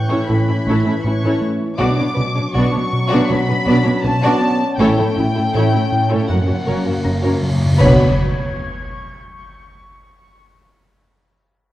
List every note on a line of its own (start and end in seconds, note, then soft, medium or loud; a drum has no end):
0.00 0.15 A2 medium
0.00 1.75 E3 medium
0.00 1.75 C#4 medium
0.00 2.13 G5 soft
0.00 0.26 C#6 medium
0.00 1.38 F#6 soft
0.00 0.18 G6 soft
0.00 2.13 G6 soft
0.09 0.18 A2 medium
0.09 0.28 C#4 medium
0.09 0.28 E4 medium
0.09 0.27 A4 medium
0.09 0.27 C#5 medium
0.18 1.38 G#6 soft
0.28 0.37 A1 medium
0.28 0.36 A2 medium
0.28 0.52 A2 loud
0.28 0.37 C#4 medium
0.28 0.36 E4 soft
0.28 0.37 E4 medium
0.28 0.36 A4 medium
0.28 1.04 B5 medium
0.48 0.55 A2 medium
0.48 0.56 C#4 medium
0.48 0.55 E4 medium
0.48 0.56 E4 medium
0.66 0.74 A1 medium
0.66 0.74 A2 medium
0.66 0.89 A3 medium
0.66 0.85 C#4 medium
0.66 0.85 E4 medium
0.66 0.85 A4 medium
0.66 0.85 C#5 medium
0.84 0.92 A2 medium
0.84 0.93 C#4 medium
0.84 0.93 E4 medium
0.84 0.94 E4 medium
0.84 0.94 A4 medium
1.03 1.12 A1 medium
1.03 1.11 A2 medium
1.03 1.27 A2 medium
1.03 1.13 C#4 medium
1.03 1.13 E4 medium
1.03 1.42 C#6 medium
1.23 1.31 A2 medium
1.23 1.42 C#4 medium
1.23 1.42 E4 medium
1.23 1.41 A4 medium
1.23 1.41 C#5 medium
1.41 1.64 A3 medium
1.78 1.87 B1 medium
1.78 2.01 B2 medium
1.78 1.87 B2 medium
1.78 2.88 B2 loud
1.78 4.62 F#3 medium
1.78 1.98 B3 medium
1.78 7.43 C#4 medium
1.78 1.98 D4 medium
1.78 1.97 F#4 medium
1.78 1.97 D5 medium
1.78 2.50 D6 loud
1.98 2.07 B2 medium
1.98 2.07 B3 medium
1.98 2.05 D4 medium
1.98 2.07 D4 medium
1.98 2.06 C#5 medium
2.14 2.25 B1 medium
2.14 2.39 B2 medium
2.14 2.25 B2 medium
2.14 2.22 C#4 medium
2.14 2.23 B4 medium
2.19 2.26 B3 medium
2.19 2.26 D4 medium
2.35 2.44 B2 medium
2.35 2.44 B3 medium
2.35 2.43 D4 medium
2.35 2.44 D4 medium
2.35 2.43 C#5 medium
2.52 2.62 B1 medium
2.52 2.77 B2 medium
2.52 2.63 B2 medium
2.52 2.73 B3 loud
2.52 2.73 D4 medium
2.52 2.71 F#4 medium
2.52 2.71 D5 medium
2.52 3.30 C#6 loud
2.72 2.82 B3 medium
2.72 2.80 D4 medium
2.72 2.82 D4 medium
2.72 2.79 C#5 medium
2.76 2.83 B2 medium
2.93 3.15 B2 medium
3.09 3.19 B2 loud
3.09 3.29 B3 loud
3.09 3.29 D4 loud
3.09 3.27 F#4 loud
3.09 3.27 D5 loud
3.28 3.37 B1 medium
3.28 3.37 B2 medium
3.28 3.52 B2 medium
3.28 3.38 B3 medium
3.28 3.37 D4 medium
3.28 3.39 D4 medium
3.28 3.37 C#5 medium
3.28 4.04 B5 loud
3.47 3.56 B2 medium
3.47 3.57 B3 medium
3.47 3.55 C#4 medium
3.47 3.57 D4 medium
3.47 3.55 B4 medium
3.66 3.74 B1 medium
3.66 3.74 B2 medium
3.66 3.90 B3 medium
3.66 3.85 B3 loud
3.66 3.85 D4 loud
3.66 3.84 F#4 medium
3.66 3.84 D5 loud
3.84 3.93 B2 medium
3.84 3.94 B3 medium
3.84 3.92 D4 medium
3.84 3.94 D4 medium
3.84 3.92 C#5 medium
4.03 4.12 B1 medium
4.03 4.12 B2 medium
4.03 4.27 B2 medium
4.03 4.12 B3 medium
4.03 4.11 C#4 medium
4.03 4.12 D4 medium
4.03 4.11 B4 medium
4.03 4.79 A5 loud
4.23 4.31 B2 medium
4.23 4.41 B3 loud
4.23 4.41 D4 loud
4.23 4.41 F#4 loud
4.23 4.41 D5 loud
4.41 4.64 B3 medium
4.78 4.87 A1 loud
4.78 5.02 A2 medium
4.78 4.87 A2 loud
4.78 6.25 A3 loud
4.78 4.97 C#4 loud
4.78 4.97 E4 loud
4.78 4.97 A4 medium
4.78 4.97 C#5 loud
4.78 6.26 G5 loud
4.78 cymbal swell medium
4.98 5.06 A2 medium
4.98 5.06 C#4 medium
4.98 5.06 E4 medium
4.98 5.06 A4 medium
5.16 5.24 A1 medium
5.16 5.39 A2 medium
5.16 5.26 A2 medium
5.16 5.24 C#4 medium
5.16 5.26 C#4 medium
5.16 5.24 E4 medium
5.16 5.26 E4 medium
5.34 5.45 A2 medium
5.34 5.44 C#4 medium
5.34 5.42 E4 medium
5.34 5.44 E4 medium
5.34 5.42 A4 medium
5.54 5.62 A1 medium
5.54 5.77 A2 medium
5.54 5.63 A2 medium
5.54 5.71 C#4 medium
5.54 5.71 E4 medium
5.54 5.71 A4 medium
5.54 5.72 C#5 medium
5.72 5.82 A2 medium
5.72 5.80 C#4 medium
5.72 5.79 E4 medium
5.72 5.80 E4 medium
5.72 5.80 A4 medium
5.92 6.14 A2 medium
6.09 6.20 A2 medium
6.09 6.27 C#4 medium
6.09 6.28 E4 medium
6.09 6.28 A4 medium
6.09 6.28 C#5 medium
6.28 6.37 F#1 medium
6.28 6.52 F#2 loud
6.28 6.38 F#2 medium
6.28 7.44 A#3 medium
6.28 6.36 C#4 soft
6.28 6.36 F#4 soft
6.28 6.36 F#4 medium
6.28 6.37 A#4 soft
6.28 7.05 F#5 medium
6.39 6.44 F#2 soft
6.46 6.52 F#2 soft
6.46 6.56 F#2 soft
6.46 6.54 C#4 medium
6.46 6.55 C#4 soft
6.46 6.54 F#4 medium
6.46 6.55 F#4 soft
6.54 6.60 F#2 soft
6.61 6.67 F#2 soft
6.61 6.84 A#4 medium
6.66 6.75 F#1 medium
6.66 6.75 F#2 medium
6.66 6.73 F#2 soft
6.66 6.90 F#3 medium
6.66 6.84 C#4 medium
6.66 6.84 F#4 medium
6.66 6.84 C#5 medium
6.83 6.89 F#2 soft
6.83 6.93 C#4 medium
6.83 6.93 F#4 medium
6.83 6.93 A#4 medium
6.87 6.94 F#2 medium
6.87 6.96 F#2 medium
6.97 7.04 F#2 medium
7.04 7.13 F#1 soft
7.04 7.28 F#2 medium
7.04 7.11 F#2 medium
7.04 7.13 F#2 medium
7.04 7.11 C#4 medium
7.04 7.12 C#4 medium
7.04 7.12 F#4 soft
7.04 7.12 F#4 medium
7.04 7.76 A#5 soft
7.04 7.76 A#6 soft
7.13 7.19 F#2 medium
7.20 7.26 F#2 medium
7.20 7.41 C#4 medium
7.20 7.41 F#4 medium
7.20 7.41 A#4 medium
7.20 7.40 C#5 medium
7.25 7.32 F#2 medium
7.25 7.34 F#2 medium
7.36 7.41 F#2 medium
7.42 7.49 F#2 medium
7.42 7.65 F#3 medium
7.51 7.57 F#2 medium
7.58 7.64 F#2 medium
7.66 7.71 F#2 loud
7.72 7.79 F#2 loud
7.78 8.22 B1 medium
7.78 8.15 B2 loud
7.78 8.23 B2 medium
7.78 8.14 B3 medium
7.78 8.21 D4 medium
7.78 8.21 F#4 medium
7.78 8.21 B4 medium
7.78 8.21 C#5 medium
7.78 8.14 C#5 medium
7.78 8.21 B5 loud
7.78 10.39 C#6 medium
7.78 9.18 G#6 medium
7.78 concert bass drum medium
7.78 crash medium
7.78 impact medium
9.18 9.63 G6 medium